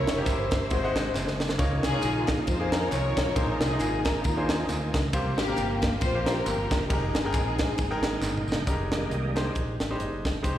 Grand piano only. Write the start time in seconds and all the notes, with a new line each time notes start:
Already playing: C3
0.17 A#3 C#4 D#4 G4
0.23 E4
0.71 G#2 G#3 D#4 F#4 C5
0.84 G#3 C5 D#5 F#5
1.58 C#3 A#3 D#4 F4 C#5
1.93 A#3 D#4 F4 C#5
2.60 A#3 D#4 F4 G#4
3.36 A#2 A#3 D#4 G#4 C5
3.72 A#3 D#4 G#4 D#5
4.37 A#3 D4 G#4 C5
4.43 D#4
5.13 C3 A#3 F4 G4 C5
5.48 A#3 F4 G4 A#4
6.14 A#3 F4 G4 C5
6.90 G#3 D#4 G4 A#4
7.25 G#3 D#4 A#4 G5
7.91 G#3 D#4 A#4 G5
8.67 G3 D#4 G4 A#4
8.72 G#3
9.36 G#3 D#4 G4 C5
9.90 G3 D#4 G4 C5
9.96 G#3
10.43 G#3 D#4 G4 C5